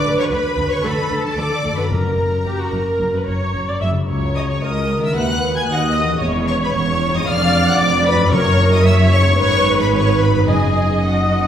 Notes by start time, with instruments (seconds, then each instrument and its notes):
Already playing: harp D3 D4 F#4 A4, viola section B4, violin section D5 D6
0.04 double bass section D2, cello section D3
0.18 cello section D3, violin section C#5 C#6
0.30 double bass section D2, cello section D3, violin section B4 B5
0.57 double bass section D2, cello section D3
0.70 violin section C#5 C#6
0.83 double bass section D2, cello section D3, viola section A4, violin section B4 B5
0.97 cello section D3
1.11 double bass section D2, cello section D3
1.23 cello section D3, violin section A4 A5
1.36 double bass section D2, cello section D3, violin section D5 D6
1.50 cello section D3
1.63 double bass section D2, cello section D3
1.72 harp F#2
1.76 cello section D3, harp C#4, violin section B4 B5
1.81 harp F#4
1.85 harp A#4
1.90 double bass section F#1, cello section F#2, timpani F#2, viola section A#4, violin section A#4 A#5
2.04 cello section F#2
2.18 double bass section F#1, cello section F#2
2.31 cello section F#2
2.45 double bass section F#1, cello section F#2, viola section G4
2.60 viola section F#4
2.72 double bass section F#1, cello section F#2, viola section A#4
3.00 double bass section F#1, cello section F#2
3.13 cello section F#2, viola section B4
3.27 double bass section F#1, cello section F#2, viola section C#5
3.41 cello section F#2
3.54 double bass section F#1, cello section F#2
3.68 cello section F#2, viola section D5
3.81 double bass section F#1, cello section F#2, viola section E5
3.90 harp C#3
3.94 cello section F#2, harp E4
3.99 harp F#4
4.04 harp A#4
4.08 cello section C#2, double bass section C#2, viola section C#5
4.36 violin section D#5 D#6
4.51 violin section C#5 C#6
4.62 double bass section C#2, cello section C#2, viola section A#4, violin section D#5 D#6
4.98 harp D#3
5.03 harp D#4, violin section E5 E6
5.07 harp F#4
5.12 double bass section D#2, cello section D#2, harp B4
5.16 viola section B4, violin section F#5 F#6
5.56 violin section G#5 G#6
5.68 double bass section D#2, cello section D#2, viola section D#5, violin section F#5 F#6
5.96 violin section D#5 D#6
6.03 harp E3
6.08 harp C#4
6.13 harp G#4
6.17 harp C#5
6.21 double bass section E1, cello section E2, viola section C#5
6.48 violin section C#5 C#6
6.63 violin section B4 B5
6.74 double bass section E1, cello section E2, violin section C#5 C#6
7.10 harp F2
7.15 harp D4, violin section D#5 D#6
7.19 harp G#4
7.24 double bass section F1, cello section F2, harp B4, viola section D5, violin section F6
7.29 violin section F5
7.67 violin section F#5 F#6
7.79 double bass section F1, cello section F2, violin section D5 D6
8.06 violin section B4 B5
8.14 harp F#2
8.19 harp C#4
8.24 harp E4
8.28 cello section F#2, harp A#4
8.32 double bass section F#1, timpani F#2, viola section A#4, violin section C#5 C#6
8.73 violin section D#5 D#6
8.86 viola section C#5, violin section E5 E6
9.12 violin section C#5 C#6
9.21 harp G#2
9.25 harp B3
9.30 harp D#4
9.34 harp B4
9.38 double bass section G#1, cello section G#2, viola section B4, violin section C#5 C#6
9.79 violin section B4 B5
9.93 violin section C#5 C#6
10.20 violin section B4 B5
10.29 harp F#2
10.33 harp B3
10.38 harp D#4
10.42 harp B4
10.47 double bass section F#1, cello section F#2, timpani F#2, violin section G#4 G#5, viola section D#5
11.04 violin section F#4 F#5
11.38 harp F#2
11.43 harp A#3